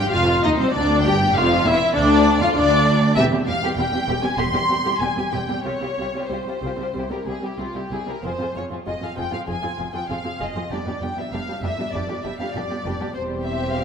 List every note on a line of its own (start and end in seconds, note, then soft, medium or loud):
0.00 0.13 G4 medium
0.00 0.13 G5 loud
0.11 0.44 F1 medium
0.11 0.43 F2 medium
0.11 0.45 F4 medium
0.11 0.45 F4 loud
0.11 0.42 F5 loud
0.42 0.50 D#2 medium
0.42 0.51 D#2 medium
0.42 0.60 D#4 loud
0.42 0.49 D#5 loud
0.59 0.74 C2 medium
0.59 0.75 C4 medium
0.59 0.67 C4 medium
0.59 0.74 C5 loud
0.72 1.05 D2 medium
0.72 1.05 D4 loud
0.72 1.03 D5 loud
0.77 1.06 D2 medium
0.77 1.06 D4 loud
1.02 1.36 G1 loud
1.02 1.36 G2 medium
1.02 1.34 G5 loud
1.07 1.15 G4 loud
1.07 1.37 G4 loud
1.34 1.65 F1 medium
1.34 1.65 F2 loud
1.34 1.44 F4 medium
1.34 1.65 F5 loud
1.38 1.67 F4 loud
1.64 1.73 E1 medium
1.64 1.74 E2 loud
1.64 1.74 E4 loud
1.64 1.95 E5 loud
1.68 1.96 E4 medium
1.94 2.40 D2 loud
1.94 2.40 D4 loud
1.94 2.41 D4 loud
1.94 2.39 D5 loud
2.41 2.56 F2 loud
2.41 2.47 F4 medium
2.41 2.57 F4 loud
2.41 2.56 F5 loud
2.55 3.16 D2 loud
2.55 3.16 D4 loud
2.55 3.18 D4 loud
2.55 3.15 D5 loud
3.16 3.23 E1 medium
3.16 3.23 E2 loud
3.16 3.23 G3 medium
3.16 3.23 C4 medium
3.16 3.25 G4 medium
3.16 3.24 E5 loud
3.32 3.39 E2 medium
3.32 3.38 G3 medium
3.32 3.38 C4 medium
3.32 3.39 G4 medium
3.47 3.54 E1 medium
3.47 3.54 E2 medium
3.47 3.54 G3 medium
3.47 3.54 C4 medium
3.47 3.53 G4 medium
3.47 3.77 F5 loud
3.62 3.68 E2 medium
3.62 3.69 G3 medium
3.62 3.69 C4 medium
3.62 3.70 G4 loud
3.76 3.83 E1 medium
3.76 3.83 E2 medium
3.76 3.84 G3 medium
3.76 3.84 C4 medium
3.76 3.85 G4 medium
3.76 4.21 G5 loud
3.92 3.98 E2 medium
3.92 3.99 G3 medium
3.92 3.99 C4 medium
3.92 3.99 G4 medium
4.07 4.14 E1 medium
4.07 4.14 E2 medium
4.07 4.14 G3 medium
4.07 4.14 C4 medium
4.07 4.14 G4 medium
4.23 4.29 E2 medium
4.23 4.29 G3 medium
4.23 4.29 C4 medium
4.23 4.30 G4 medium
4.23 4.38 G#5 loud
4.37 4.44 E1 medium
4.37 4.44 E2 medium
4.37 4.44 G3 medium
4.37 4.45 C4 medium
4.37 4.44 G4 medium
4.37 4.99 C6 loud
4.53 4.60 E2 medium
4.53 4.60 G3 medium
4.53 4.60 C4 medium
4.53 4.60 G4 medium
4.69 4.75 E1 medium
4.69 4.75 E2 medium
4.69 4.75 G3 medium
4.69 4.75 C4 medium
4.69 4.76 G4 medium
4.84 4.91 E2 medium
4.84 4.91 G3 medium
4.84 4.91 C4 medium
4.84 4.92 G4 medium
4.98 5.06 E1 medium
4.98 5.07 E2 medium
4.98 5.08 G3 medium
4.98 5.08 C4 medium
4.98 5.08 G4 medium
4.98 5.31 G#5 medium
5.16 5.23 E2 medium
5.16 5.23 G3 medium
5.16 5.23 C4 soft
5.16 5.24 G4 medium
5.31 5.39 E1 medium
5.31 5.39 E2 medium
5.31 5.39 G3 medium
5.31 5.39 C4 medium
5.31 5.40 G4 medium
5.31 5.64 G5 medium
5.48 5.55 E2 medium
5.48 5.56 G3 medium
5.48 5.56 C4 medium
5.48 5.56 G4 medium
5.63 5.71 C2 medium
5.63 5.71 G3 medium
5.63 5.71 C4 medium
5.63 5.72 F4 medium
5.63 5.72 G4 medium
5.63 6.28 C#5 medium
5.81 5.88 C2 medium
5.81 5.88 G3 soft
5.81 5.88 C4 soft
5.81 5.88 F4 soft
5.81 5.88 G4 soft
5.97 6.04 C2 soft
5.97 6.05 G3 soft
5.97 6.05 C4 soft
5.97 6.06 F4 soft
5.97 6.07 G4 soft
6.14 6.20 C2 medium
6.14 6.20 G3 medium
6.14 6.21 C4 medium
6.14 6.22 F4 medium
6.14 6.22 G4 medium
6.29 6.36 C2 medium
6.29 6.37 C2 soft
6.29 6.36 G3 soft
6.29 6.36 C4 soft
6.29 6.38 F4 soft
6.29 6.38 G4 soft
6.29 7.10 C5 medium
6.45 6.52 C2 soft
6.45 6.53 G3 soft
6.45 6.53 C4 medium
6.45 6.54 F4 medium
6.45 6.54 G4 soft
6.62 6.69 C2 medium
6.62 6.68 G3 medium
6.62 6.68 C4 medium
6.66 6.72 F4 medium
6.66 6.72 G4 medium
6.77 6.85 C2 soft
6.77 6.84 G3 soft
6.77 6.84 C4 soft
6.77 6.87 G4 soft
6.82 6.88 F4 medium
6.94 7.00 C2 medium
6.94 7.01 C2 medium
6.94 7.00 G3 medium
6.94 7.00 C4 soft
6.98 7.04 E4 medium
6.98 7.04 G4 medium
7.10 7.17 C2 soft
7.10 7.17 G3 soft
7.10 7.17 C4 soft
7.10 7.19 E4 soft
7.10 7.19 G4 soft
7.10 7.27 A#4 medium
7.26 7.33 C2 soft
7.26 7.33 G3 soft
7.26 7.33 C4 soft
7.26 7.35 E4 soft
7.26 7.35 G4 soft
7.26 7.43 G#4 medium
7.41 7.49 C2 medium
7.41 7.48 G3 medium
7.41 7.48 C4 medium
7.41 7.51 E4 medium
7.41 7.51 G4 medium
7.41 7.60 G4 medium
7.58 7.65 C2 soft
7.58 7.66 C2 soft
7.58 7.65 G3 soft
7.58 7.65 C4 soft
7.58 7.67 E4 soft
7.58 7.75 F4 medium
7.58 7.66 G4 soft
7.75 7.81 C2 soft
7.75 7.81 G3 soft
7.75 7.81 C4 soft
7.75 7.82 E4 soft
7.75 7.82 G4 soft
7.75 7.92 G4 medium
7.90 7.98 C2 medium
7.90 7.97 G3 medium
7.90 7.97 C4 medium
7.90 7.99 E4 medium
7.90 7.99 G4 medium
7.90 8.08 G#4 medium
8.06 8.14 C2 soft
8.06 8.13 G3 soft
8.06 8.13 C4 soft
8.06 8.15 E4 soft
8.06 8.14 G4 soft
8.06 8.24 A#4 medium
8.23 8.30 F1 medium
8.23 8.29 F2 medium
8.23 8.29 F3 medium
8.23 8.30 C4 medium
8.23 8.31 F4 medium
8.23 8.32 G#4 medium
8.23 8.56 C5 medium
8.38 8.45 F2 soft
8.38 8.45 F3 soft
8.38 8.45 C4 soft
8.38 8.47 F4 soft
8.38 8.47 G#4 soft
8.54 8.62 F1 soft
8.54 8.61 F2 soft
8.54 8.61 F3 soft
8.54 8.61 C4 soft
8.54 8.62 F4 soft
8.54 8.62 G#4 soft
8.54 8.64 C#5 medium
8.69 8.77 F2 medium
8.69 8.76 F3 medium
8.69 8.76 C4 medium
8.69 8.78 F4 medium
8.69 8.77 G#4 medium
8.85 8.93 F1 soft
8.85 8.93 F2 medium
8.85 8.92 F3 soft
8.85 8.92 C4 soft
8.85 8.93 F4 soft
8.85 8.93 G#4 soft
8.85 9.02 D#5 medium
9.00 9.08 F2 soft
9.00 9.07 F3 soft
9.00 9.07 C4 soft
9.00 9.08 F4 soft
9.00 9.09 G#4 soft
9.05 9.19 F5 medium
9.15 9.24 F1 medium
9.15 9.24 F2 medium
9.15 9.22 F3 medium
9.15 9.22 C4 medium
9.15 9.23 F4 medium
9.15 9.23 G#4 medium
9.15 9.33 G5 medium
9.30 9.39 F2 soft
9.30 9.38 F3 soft
9.30 9.38 C4 soft
9.30 9.37 F4 soft
9.30 9.37 G#4 soft
9.30 9.40 F5 medium
9.46 9.54 F1 medium
9.46 9.54 F2 medium
9.46 9.53 F3 medium
9.46 9.53 C4 medium
9.46 9.52 F4 medium
9.46 9.53 G#4 medium
9.46 9.94 G#5 medium
9.62 9.70 F2 soft
9.62 9.69 F3 soft
9.62 9.69 C4 soft
9.62 9.69 F4 soft
9.62 9.69 G#4 soft
9.77 9.85 F1 soft
9.77 9.85 F2 soft
9.77 9.85 F3 soft
9.77 9.85 C4 soft
9.77 9.84 F4 soft
9.77 9.84 G#4 soft
9.93 10.00 F2 medium
9.93 10.00 F3 medium
9.93 10.01 C4 medium
9.93 10.00 F4 medium
9.93 9.99 G#4 medium
9.93 10.10 G5 medium
10.09 10.16 F1 soft
10.09 10.16 F2 soft
10.09 10.16 F3 soft
10.09 10.16 C4 soft
10.09 10.16 F4 soft
10.09 10.16 G#4 soft
10.09 10.40 F5 medium
10.24 10.31 F2 soft
10.24 10.31 F3 medium
10.24 10.31 C4 soft
10.24 10.31 F4 soft
10.24 10.30 G#4 medium
10.40 10.47 F1 medium
10.40 10.46 F2 medium
10.40 10.46 F3 medium
10.40 10.46 C4 medium
10.40 10.46 F4 medium
10.40 10.46 G#4 medium
10.40 10.71 D#5 medium
10.56 10.62 F2 soft
10.56 10.62 F3 medium
10.56 10.62 C4 soft
10.56 10.62 F4 medium
10.56 10.62 G#4 medium
10.71 10.77 F1 medium
10.71 10.77 F2 medium
10.71 10.78 G3 medium
10.71 10.77 B3 medium
10.71 10.77 D4 medium
10.71 10.77 G4 medium
10.71 11.02 D5 medium
10.86 10.92 F2 soft
10.86 10.92 G3 soft
10.86 10.92 B3 soft
10.86 10.93 D4 soft
10.86 10.93 G4 soft
11.00 11.07 F1 soft
11.00 11.07 F2 soft
11.00 11.08 G3 soft
11.00 11.08 B3 soft
11.00 11.09 D4 soft
11.00 11.09 G4 soft
11.00 11.17 G5 medium
11.16 11.22 F2 medium
11.16 11.23 G3 medium
11.16 11.23 B3 medium
11.16 11.24 D4 medium
11.16 11.24 G4 medium
11.16 11.33 E5 medium
11.31 11.38 F1 soft
11.31 11.37 F2 soft
11.31 11.39 G3 soft
11.31 11.39 B3 soft
11.31 11.39 D4 soft
11.31 11.39 G4 soft
11.31 11.63 F5 medium
11.46 11.52 F2 soft
11.46 11.54 G3 medium
11.46 11.54 B3 soft
11.46 11.55 D4 soft
11.46 11.54 G4 soft
11.61 11.68 F1 medium
11.61 11.67 F2 medium
11.61 11.69 G3 medium
11.61 11.69 B3 medium
11.61 11.69 D4 medium
11.61 11.69 G4 medium
11.61 11.92 E5 medium
11.76 11.83 F2 soft
11.76 11.85 G3 soft
11.76 11.85 B3 soft
11.76 11.85 D4 soft
11.76 11.85 G4 soft
11.91 12.00 F1 medium
11.91 11.97 F2 medium
11.91 12.00 G3 medium
11.91 12.00 B3 medium
11.91 12.00 D4 medium
11.91 12.00 G4 medium
11.91 12.23 D5 medium
12.07 12.13 F2 soft
12.07 12.16 G3 medium
12.07 12.16 B3 soft
12.07 12.14 D4 medium
12.07 12.14 G4 medium
12.23 12.30 F1 soft
12.23 12.29 F2 soft
12.23 12.31 G3 soft
12.23 12.31 B3 soft
12.23 12.30 D4 soft
12.23 12.30 G4 soft
12.23 12.39 E5 medium
12.38 12.44 F2 medium
12.38 12.46 G3 medium
12.38 12.46 B3 medium
12.38 12.46 D4 medium
12.38 12.46 G4 medium
12.38 12.54 F5 medium
12.54 12.61 F1 soft
12.54 12.60 F2 soft
12.54 12.62 G3 soft
12.54 12.62 B3 medium
12.54 12.62 D4 soft
12.54 12.61 G4 soft
12.54 13.15 D5 medium
12.68 12.74 F2 soft
12.68 12.77 G3 soft
12.68 12.77 B3 medium
12.68 12.76 D4 soft
12.68 12.76 G4 medium
12.84 12.92 F1 medium
12.84 12.90 F2 medium
12.84 12.91 G3 medium
12.84 12.91 B3 medium
12.84 12.91 D4 medium
12.84 12.92 G4 medium
12.98 13.05 F2 soft
12.98 13.07 G3 medium
12.98 13.07 B3 medium
12.98 13.06 D4 medium
12.98 13.06 G4 medium
13.14 13.84 E1 medium
13.14 13.84 E2 medium
13.14 13.84 G3 medium
13.14 13.84 C4 medium
13.14 13.84 G4 medium
13.14 13.22 C5 medium
13.14 13.84 C5 medium
13.43 13.74 E5 medium
13.73 13.84 F5 medium